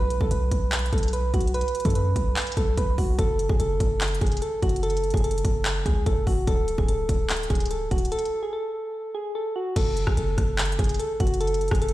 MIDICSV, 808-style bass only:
0, 0, Header, 1, 2, 480
1, 0, Start_track
1, 0, Key_signature, 3, "minor"
1, 0, Tempo, 410959
1, 1802, Time_signature, 4, 2, 24, 8
1, 13938, End_track
2, 0, Start_track
2, 0, Title_t, "808-style bass"
2, 0, Program_c, 0, 38
2, 0, Note_on_c, 0, 35, 109
2, 227, Note_off_c, 0, 35, 0
2, 242, Note_on_c, 0, 35, 100
2, 357, Note_off_c, 0, 35, 0
2, 362, Note_on_c, 0, 35, 112
2, 593, Note_off_c, 0, 35, 0
2, 601, Note_on_c, 0, 35, 101
2, 1062, Note_off_c, 0, 35, 0
2, 1082, Note_on_c, 0, 35, 105
2, 1543, Note_off_c, 0, 35, 0
2, 1562, Note_on_c, 0, 35, 106
2, 1908, Note_off_c, 0, 35, 0
2, 2162, Note_on_c, 0, 42, 101
2, 2507, Note_off_c, 0, 42, 0
2, 2521, Note_on_c, 0, 35, 102
2, 2752, Note_off_c, 0, 35, 0
2, 3001, Note_on_c, 0, 35, 104
2, 3232, Note_off_c, 0, 35, 0
2, 3241, Note_on_c, 0, 35, 105
2, 3472, Note_off_c, 0, 35, 0
2, 3483, Note_on_c, 0, 35, 108
2, 3713, Note_off_c, 0, 35, 0
2, 3721, Note_on_c, 0, 30, 105
2, 4067, Note_off_c, 0, 30, 0
2, 4081, Note_on_c, 0, 30, 104
2, 4194, Note_off_c, 0, 30, 0
2, 4201, Note_on_c, 0, 30, 112
2, 4432, Note_off_c, 0, 30, 0
2, 4441, Note_on_c, 0, 30, 104
2, 4902, Note_off_c, 0, 30, 0
2, 4922, Note_on_c, 0, 30, 105
2, 5152, Note_off_c, 0, 30, 0
2, 5402, Note_on_c, 0, 30, 108
2, 5978, Note_off_c, 0, 30, 0
2, 6002, Note_on_c, 0, 30, 102
2, 6347, Note_off_c, 0, 30, 0
2, 6361, Note_on_c, 0, 30, 100
2, 6822, Note_off_c, 0, 30, 0
2, 6841, Note_on_c, 0, 37, 104
2, 7072, Note_off_c, 0, 37, 0
2, 7082, Note_on_c, 0, 30, 103
2, 7312, Note_off_c, 0, 30, 0
2, 7322, Note_on_c, 0, 30, 108
2, 7552, Note_off_c, 0, 30, 0
2, 7561, Note_on_c, 0, 26, 104
2, 7907, Note_off_c, 0, 26, 0
2, 7921, Note_on_c, 0, 26, 106
2, 8037, Note_off_c, 0, 26, 0
2, 8041, Note_on_c, 0, 26, 105
2, 8272, Note_off_c, 0, 26, 0
2, 8281, Note_on_c, 0, 26, 102
2, 8742, Note_off_c, 0, 26, 0
2, 8761, Note_on_c, 0, 26, 106
2, 9222, Note_off_c, 0, 26, 0
2, 9242, Note_on_c, 0, 26, 108
2, 9472, Note_off_c, 0, 26, 0
2, 11402, Note_on_c, 0, 30, 113
2, 11747, Note_off_c, 0, 30, 0
2, 11762, Note_on_c, 0, 30, 103
2, 11877, Note_off_c, 0, 30, 0
2, 11882, Note_on_c, 0, 30, 113
2, 12112, Note_off_c, 0, 30, 0
2, 12121, Note_on_c, 0, 30, 104
2, 12582, Note_off_c, 0, 30, 0
2, 12602, Note_on_c, 0, 30, 103
2, 12832, Note_off_c, 0, 30, 0
2, 13083, Note_on_c, 0, 30, 107
2, 13658, Note_off_c, 0, 30, 0
2, 13682, Note_on_c, 0, 30, 103
2, 13938, Note_off_c, 0, 30, 0
2, 13938, End_track
0, 0, End_of_file